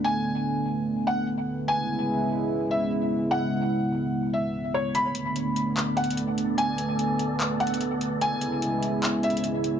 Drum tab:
HH |------------------------|------------------------|------------------------|x--x--x--x--x--xxxx--x--|
CP |------------------------|------------------------|------------------------|------------x-----------|

HH |x--x--x--x--x--xxxx--x--|x--x--x--x--x--xxxx--x--|
CP |------------x-----------|------------x-----------|